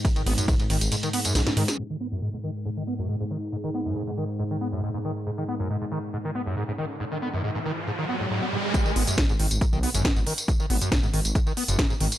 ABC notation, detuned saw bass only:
X:1
M:4/4
L:1/16
Q:1/4=138
K:G#m
V:1 name="Detuned saw bass" clef=bass
z2 G,,, z B,,, G,,, G,,, G,,, z4 B,,, z G,, z | z16 | z16 | z16 |
z16 | z2 G,,, z B,,, G,,, G,,, G,,, z B,,, z G,,, z G,,, z2 | z2 G,,, z B,,, G,,, G,,, G,,, z3 F,,, z2 G,,, z |]